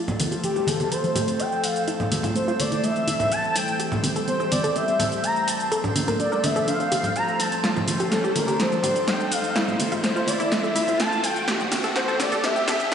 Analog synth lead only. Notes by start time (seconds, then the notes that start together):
0.44 G4
0.68 A4
0.92 C5
1.40 G5
1.64 F5
2.36 C5
2.60 D5
2.84 E5
3.32 A5
3.56 G5
4.28 C5
4.52 D5
4.76 E5
5.24 A#5
5.48 A5
6.20 D5
6.44 E5
6.68 F5
7.16 A#5
7.40 A5
8.12 A4
8.36 A#4
8.60 C5
9.08 G5
9.32 F5
10.04 C5
10.28 D5
10.52 E5
11.00 A5
11.24 G5
11.96 C5
12.20 D5
12.44 E5